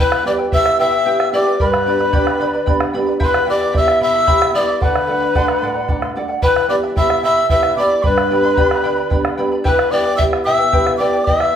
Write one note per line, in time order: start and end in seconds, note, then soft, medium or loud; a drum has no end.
0.00 0.50 E2 medium
0.00 0.25 E4 medium
0.00 0.25 G4 medium
0.00 0.24 B4 loud
0.00 0.25 B4 medium
0.00 0.24 E5 medium
0.00 0.25 G5 medium
0.00 0.24 B5 medium
0.12 bombo rim medium
0.25 0.50 B3 soft
0.25 0.50 E4 soft
0.25 0.38 E4 medium
0.25 0.51 G4 medium
0.25 0.38 B4 medium
0.25 0.33 D5 loud
0.25 0.39 E5 medium
0.25 0.37 G5 medium
0.25 0.32 D6 medium
0.38 0.51 E4 soft
0.38 0.51 B4 soft
0.38 0.52 G5 medium
0.38 bombo rim soft
0.52 0.95 B3 medium
0.52 0.95 E4 soft
0.52 0.78 E4 medium
0.52 0.95 G4 medium
0.52 0.78 B4 medium
0.52 0.77 E5 medium
0.52 0.78 E5 loud
0.52 0.79 G5 medium
0.52 0.78 E6 medium
0.52 bombo low medium
0.66 bombo rim medium
0.79 1.31 B2 medium
0.79 0.91 E4 medium
0.79 0.91 B4 medium
0.79 0.92 E5 medium
0.79 1.29 E5 loud
0.79 0.90 G5 medium
0.79 1.30 E6 medium
0.79 bombo rim soft
0.91 1.05 E4 soft
0.91 1.05 B4 soft
0.91 1.05 G5 soft
1.05 1.31 B3 soft
1.05 1.32 E4 medium
1.05 1.32 E4 soft
1.05 1.32 G4 medium
1.05 1.32 B4 medium
1.05 1.31 E5 medium
1.05 1.33 G5 medium
1.05 bombo rim soft
1.20 bombo rim medium
1.32 1.54 B3 medium
1.32 1.54 E4 soft
1.32 1.46 E4 medium
1.32 1.54 G4 medium
1.32 1.45 B4 medium
1.32 1.58 D5 medium
1.32 1.46 E5 medium
1.32 1.44 G5 medium
1.32 1.59 D6 medium
1.45 1.60 E4 soft
1.45 1.59 B4 medium
1.45 1.59 G5 medium
1.59 2.12 G2 medium
1.59 2.90 B4 medium
1.59 1.86 B4 medium
1.59 1.86 D5 medium
1.59 1.85 G5 medium
1.59 1.86 B5 medium
1.59 2.91 B5 medium
1.59 bombo low medium
1.74 bombo rim medium
1.86 2.11 B3 medium
1.86 2.12 D4 soft
1.86 2.13 G4 medium
1.86 2.00 B4 medium
1.86 1.99 D5 medium
1.86 2.00 G5 medium
1.86 1.98 B5 medium
1.99 2.12 B4 soft
1.99 2.12 D5 soft
1.99 2.12 B5 medium
1.99 bombo rim soft
2.13 2.56 B3 soft
2.13 2.56 D4 soft
2.13 2.40 G4 medium
2.13 2.57 G4 medium
2.13 2.39 B4 medium
2.13 2.40 D5 medium
2.13 2.39 G5 medium
2.13 2.40 B5 loud
2.13 bombo low medium
2.27 bombo rim medium
2.40 2.92 D3 medium
2.40 2.54 B4 medium
2.40 2.53 D5 medium
2.40 2.53 G5 medium
2.40 2.52 B5 medium
2.40 bombo rim soft
2.53 2.65 B4 soft
2.53 2.66 D5 medium
2.53 2.66 B5 medium
2.66 2.93 B3 soft
2.66 2.93 D4 soft
2.66 2.93 G4 medium
2.66 2.93 B4 medium
2.66 2.93 D5 medium
2.66 2.92 G5 medium
2.66 2.94 B5 medium
2.66 bombo rim soft
2.66 bombo low medium
2.80 bombo rim medium
2.93 3.15 B3 medium
2.93 3.15 D4 soft
2.93 3.16 G4 medium
2.93 3.07 B4 medium
2.93 3.06 D5 medium
2.93 3.07 G5 medium
2.93 3.05 B5 medium
3.07 3.20 B4 soft
3.07 3.20 D5 soft
3.07 3.19 B5 medium
3.20 3.73 E2 medium
3.20 3.46 E4 medium
3.20 3.47 G4 medium
3.20 3.46 E5 medium
3.20 3.45 G5 loud
3.20 3.47 B5 medium
3.20 bombo low medium
3.24 3.47 B4 loud
3.24 3.30 C6 medium
3.29 3.47 B5 medium
3.34 bombo rim medium
3.46 3.73 B3 medium
3.46 3.73 E4 soft
3.46 3.60 E4 medium
3.46 3.73 G4 medium
3.46 3.74 D5 loud
3.46 3.59 E5 medium
3.46 3.60 G5 medium
3.46 3.58 B5 medium
3.46 3.74 D6 medium
3.60 3.73 E4 soft
3.60 3.73 E5 medium
3.60 3.73 B5 medium
3.60 bombo rim soft
3.73 4.17 B3 medium
3.73 3.99 E4 medium
3.73 4.17 E4 soft
3.73 4.17 G4 medium
3.73 4.00 E5 medium
3.73 3.99 G5 medium
3.73 4.00 B5 medium
3.73 bombo low medium
3.77 4.01 E5 loud
3.77 4.01 E6 medium
3.88 bombo rim medium
4.00 4.53 B2 medium
4.00 4.14 E4 medium
4.00 4.13 E5 medium
4.00 4.52 E5 loud
4.00 4.14 G5 medium
4.00 4.12 B5 medium
4.00 4.52 E6 loud
4.00 bombo rim soft
4.14 4.26 E4 soft
4.14 4.26 E5 soft
4.14 4.26 B5 soft
4.27 4.53 B3 soft
4.27 4.53 E4 medium
4.27 4.53 E4 soft
4.27 4.54 G4 medium
4.27 4.53 E5 medium
4.27 4.52 G5 medium
4.27 4.54 B5 loud
4.27 bombo rim soft
4.27 bombo low medium
4.42 bombo rim medium
4.53 4.76 B3 medium
4.53 4.68 E4 medium
4.53 4.76 E4 soft
4.53 4.76 G4 medium
4.53 4.80 D5 medium
4.53 4.67 E5 medium
4.53 4.68 G5 medium
4.53 4.66 B5 medium
4.53 4.60 D#6 medium
4.59 4.80 D6 medium
4.68 4.82 E4 soft
4.68 4.80 E5 soft
4.68 4.81 B5 medium
4.80 5.33 D3 medium
4.80 5.06 A4 medium
4.80 6.13 B4 medium
4.80 5.07 D5 medium
4.80 5.08 F#5 medium
4.80 4.86 C6 medium
4.80 bombo rim soft
4.80 bombo low medium
4.85 6.12 B5 medium
4.96 bombo rim medium
5.07 5.34 A3 medium
5.07 5.34 D4 soft
5.07 5.35 F#4 medium
5.07 5.21 A4 medium
5.07 5.21 D5 medium
5.07 5.19 F#5 medium
5.07 bombo rim soft
5.21 5.34 D5 soft
5.21 5.35 F#5 medium
5.35 5.78 A3 medium
5.35 5.78 D4 soft
5.35 5.79 F#4 medium
5.35 5.61 A4 medium
5.35 5.62 D5 medium
5.35 5.63 F#5 medium
5.35 bombo rim soft
5.35 bombo low medium
5.48 bombo rim medium
5.62 6.14 A2 medium
5.62 5.75 A4 medium
5.62 5.74 D5 medium
5.62 5.73 F#5 medium
5.74 5.88 D5 soft
5.74 5.89 F#5 medium
5.88 6.15 A3 soft
5.88 6.15 D4 soft
5.88 6.15 F#4 soft
5.88 6.14 A4 medium
5.88 6.15 D5 medium
5.88 6.16 F#5 medium
5.88 bombo low medium
6.02 bombo rim medium
6.16 6.38 A3 soft
6.16 6.38 D4 soft
6.16 6.38 F#4 medium
6.16 6.29 A4 medium
6.16 6.28 D5 medium
6.16 6.27 F#5 medium
6.16 bombo rim soft
6.28 6.42 D5 soft
6.28 6.42 F#5 soft
6.28 bombo rim soft
6.42 6.95 E3 medium
6.42 6.68 E4 medium
6.42 6.69 B4 medium
6.42 6.68 B4 loud
6.42 6.69 E5 medium
6.42 6.68 G5 medium
6.42 6.67 B5 medium
6.42 6.69 B5 loud
6.42 bombo low medium
6.56 bombo rim medium
6.68 6.94 B3 medium
6.68 6.95 E4 soft
6.68 6.83 E4 medium
6.68 6.95 G4 medium
6.68 6.76 D5 loud
6.68 6.82 E5 medium
6.68 6.83 G5 medium
6.68 6.82 B5 medium
6.68 6.75 D6 medium
6.83 6.95 E4 soft
6.83 6.96 E5 soft
6.83 6.96 B5 soft
6.83 bombo rim soft
6.95 7.39 B3 medium
6.95 7.39 E4 soft
6.95 7.23 E4 medium
6.95 7.39 G4 medium
6.95 7.23 E5 medium
6.95 7.22 E5 loud
6.95 7.22 G5 medium
6.95 7.23 B5 medium
6.95 7.22 E6 medium
6.95 bombo low medium
7.10 bombo rim medium
7.23 7.75 B2 medium
7.23 7.37 E4 medium
7.23 7.37 E5 medium
7.23 7.49 E5 loud
7.23 7.37 G5 medium
7.23 7.36 B5 medium
7.23 7.48 E6 loud
7.23 bombo rim soft
7.37 7.49 E4 soft
7.37 7.50 E5 soft
7.37 7.50 B5 medium
7.49 7.76 B3 soft
7.49 7.76 E4 soft
7.49 7.77 E4 medium
7.49 7.76 G4 medium
7.49 7.77 B4 medium
7.49 7.75 E5 loud
7.49 7.76 E5 medium
7.49 7.76 G5 medium
7.49 7.77 B5 medium
7.49 7.75 E6 medium
7.49 bombo rim soft
7.49 bombo low medium
7.63 bombo rim medium
7.76 7.98 B3 soft
7.76 7.99 E4 medium
7.76 7.91 E4 medium
7.76 7.99 G4 medium
7.76 8.07 D5 medium
7.76 7.90 E5 medium
7.76 7.91 G5 medium
7.76 7.89 B5 medium
7.76 8.04 D6 medium
7.91 8.03 E4 soft
7.91 8.03 E5 soft
7.91 8.03 B5 medium
8.03 8.56 G2 medium
8.03 8.30 B4 medium
8.03 9.39 B4 loud
8.03 8.30 D5 medium
8.03 8.30 G5 medium
8.03 9.38 B5 medium
8.03 8.31 B5 medium
8.03 bombo low medium
8.18 bombo rim medium
8.30 8.56 B3 soft
8.30 8.56 D4 soft
8.30 8.57 G4 medium
8.30 8.43 B4 medium
8.30 8.43 D5 medium
8.30 8.44 G5 medium
8.30 8.42 B5 medium
8.43 8.56 B4 soft
8.43 8.56 D5 soft
8.43 8.57 B5 medium
8.43 bombo rim soft
8.57 9.00 B3 medium
8.57 9.00 D4 soft
8.57 8.84 G4 medium
8.57 9.01 G4 medium
8.57 8.83 B4 medium
8.57 8.84 D5 medium
8.57 8.82 G5 medium
8.57 8.84 B5 medium
8.57 bombo low medium
8.71 bombo rim medium
8.84 9.37 D3 medium
8.84 8.97 B4 medium
8.84 8.96 D5 medium
8.84 8.98 G5 medium
8.84 8.95 B5 medium
8.84 bombo rim soft
8.96 9.10 B4 medium
8.96 9.10 D5 medium
8.96 9.11 B5 medium
9.10 9.36 B3 soft
9.10 9.37 D4 soft
9.10 9.37 G4 medium
9.10 9.37 B4 medium
9.10 9.37 D5 medium
9.10 9.36 G5 medium
9.10 9.38 B5 medium
9.10 bombo rim soft
9.10 bombo low medium
9.25 bombo rim medium
9.37 9.59 B3 medium
9.37 9.60 D4 soft
9.37 9.60 G4 medium
9.37 9.52 B4 medium
9.37 9.51 D5 medium
9.37 9.51 G5 medium
9.37 9.50 B5 medium
9.52 9.64 B4 soft
9.52 9.64 D5 medium
9.52 9.65 B5 medium
9.64 10.17 E2 medium
9.64 9.91 E4 medium
9.64 9.92 G4 medium
9.64 9.91 B4 loud
9.64 9.93 B4 loud
9.64 9.90 E5 medium
9.64 9.91 G5 medium
9.64 9.92 B5 medium
9.64 bombo low medium
9.79 bombo rim medium
9.91 10.18 B3 soft
9.91 10.05 E4 medium
9.91 10.18 E4 soft
9.91 10.18 G4 medium
9.91 10.05 B4 medium
9.91 10.17 D5 loud
9.91 10.05 E5 medium
9.91 10.04 G5 medium
9.91 10.16 D6 medium
9.91 9.96 D#6 medium
10.05 10.18 E4 soft
10.05 10.18 B4 soft
10.05 10.19 G5 medium
10.05 bombo rim soft
10.16 10.62 B3 medium
10.16 10.62 E4 medium
10.16 10.44 E4 medium
10.16 10.62 G4 medium
10.16 10.45 B4 medium
10.16 10.24 E5 loud
10.16 10.44 E5 medium
10.16 10.45 G5 medium
10.16 10.23 E6 medium
10.16 bombo low medium
10.33 bombo rim medium
10.44 10.98 B2 medium
10.44 10.59 E4 medium
10.44 10.58 B4 medium
10.44 10.59 E5 medium
10.44 10.96 E5 loud
10.44 10.57 G5 medium
10.44 10.95 E6 loud
10.44 bombo rim soft
10.58 10.71 E4 soft
10.58 10.72 B4 soft
10.58 10.72 G5 medium
10.72 10.98 B3 soft
10.72 10.98 E4 medium
10.72 10.99 E4 soft
10.72 10.99 G4 medium
10.72 10.99 B4 loud
10.72 10.98 E5 medium
10.72 10.99 G5 medium
10.72 bombo rim soft
10.72 bombo low medium
10.87 bombo rim medium
10.97 11.21 B3 medium
10.97 11.13 E4 medium
10.97 11.22 E4 soft
10.97 11.12 B4 medium
10.97 11.27 D5 medium
10.97 11.13 E5 medium
10.97 11.12 G5 medium
10.97 11.26 D6 medium
11.01 11.22 G4 medium
11.13 11.26 E4 soft
11.13 11.27 B4 soft
11.13 11.26 G5 medium
11.25 11.56 E2 medium
11.25 11.53 E4 medium
11.25 11.53 B4 medium
11.25 11.56 E5 loud
11.25 11.52 E5 medium
11.25 11.56 E6 medium
11.25 bombo low medium
11.29 11.53 G5 medium
11.40 bombo rim medium